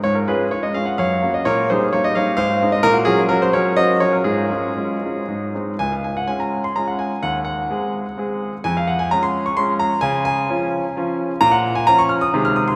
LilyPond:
\new Staff \with { instrumentName = "Grand piano" } { \time 3/4 \key des \major \tempo 4 = 128 << { des''16 bes'16 <aes' ces''>8 des''16 ees''16 f''16 ges''16 <des'' f''>8. ees''16 | <bes' des''>8 <aes' c''>8 des''16 ees''16 <des'' f''>8 <c'' f''>8. ees''16 | bes'16 ges'16 <f' aes'>8 bes'16 c''16 <bes' des''>8 <c'' ees''>8 des''16 bes'16 | <f' aes'>2~ <f' aes'>8 r8 |
aes''16 f''16 aes''16 ges''16 aes''16 bes''8 c'''16 bes''16 ges''16 aes''8 | ges''8 ges''2~ ges''8 | aes''16 f''16 ges''16 aes''16 bes''16 c'''8 des'''16 c'''8 bes''8 | aes''8 aes''2~ aes''8 |
bes''16 ges''8 aes''16 bes''16 des'''16 f'''16 ees'''8 f'''16 ees'''16 c'''16 | } \\ { aes,8 <aes des' f'>8 <aes des' f'>8 <aes des' f'>8 ges,8 <bes des' ges'>8 | bes,8 <g bes ees'>8 <g bes ees'>8 <g bes ees'>8 aes,8 <aes c' ees'>8 | bes,8 <ges des' ges'>8 <ges des' ges'>8 <ges des' ges'>8 <ges des' ges'>8 <ges des' ges'>8 | aes,8 <aes des' f'>8 <aes des' f'>8 <aes des' f'>8 aes,8 <aes c' ees'>8 |
des,4 <aes des' f'>4 <aes des' f'>4 | ees,4 <aes c' aes'>4 <aes c' aes'>4 | f,4 <aes des' f'>4 <aes des' f'>4 | des4 <f des' f'>4 <f des' f'>4 |
bes,4 <f des' f'>4 <c ees aes aes'>4 | } >> }